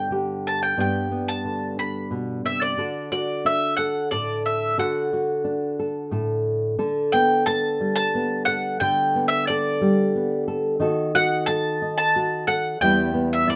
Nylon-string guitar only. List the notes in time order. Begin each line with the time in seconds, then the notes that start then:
Already playing: G2 B3 D4 G4
0.11 D3 G4
0.77 G2 B3 D4 G4
1.11 B3
1.45 D3
1.78 D4
2.11 B2
2.45 C3
2.78 D3 F#4 A4
3.12 F#4
3.45 D4
3.78 A4
4.11 A2 A4
4.78 D3 F#4 A4
5.13 F#4
5.44 D4
5.79 A4
6.11 A2 A4
6.79 D3 A4
7.13 B3
7.47 A4
7.80 G3
8.15 B3
8.48 A4
8.81 D3 A4
9.15 B3
9.50 A4
9.81 G3
10.16 B3
10.48 A4
10.80 D#3 D#4 F#4 A4
11.15 F#4
11.48 A4
11.82 D#4
12.16 F#4
12.48 A4
12.81 E2 G3 B3 E4
13.14 B3
13.47 E4